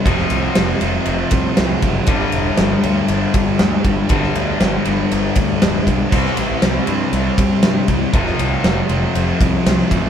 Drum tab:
CC |----------------|----------------|----------------|x---------------|
RD |x-x-x-x-x-x-x-x-|x-x-x-x-x-x-x-x-|x-x-x-x-x-x-x-x-|--x-x-x-x-x-x-x-|
SD |-o--o-------o---|----o-------o---|-o--o-------o---|-o--o-------o---|
BD |o---------o---o-|o---------o---o-|o---------o---o-|o---------o---o-|

CC |----------------|
RD |x-x-x-x-x-x-x-x-|
SD |-o--o-------o---|
BD |o---------o---o-|